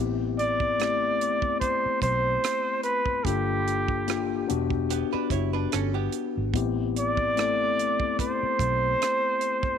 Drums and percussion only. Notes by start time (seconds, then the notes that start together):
0.39 closed hi-hat
0.60 kick
0.80 cross-stick, closed hi-hat
1.21 closed hi-hat
1.42 kick
1.61 kick, closed hi-hat
2.02 kick, closed hi-hat
2.44 cross-stick, closed hi-hat
2.83 closed hi-hat
3.06 kick
3.25 kick, closed hi-hat
3.68 closed hi-hat
3.88 kick
4.08 cross-stick, closed hi-hat
4.50 closed hi-hat
4.70 kick
4.90 closed hi-hat
5.30 kick, closed hi-hat
5.72 cross-stick, closed hi-hat
6.12 closed hi-hat
6.54 kick, closed hi-hat
6.96 closed hi-hat
7.17 kick
7.37 cross-stick, closed hi-hat
7.79 closed hi-hat
8.00 kick
8.19 kick, closed hi-hat
8.59 kick, closed hi-hat
9.02 cross-stick, closed hi-hat
9.41 closed hi-hat
9.63 kick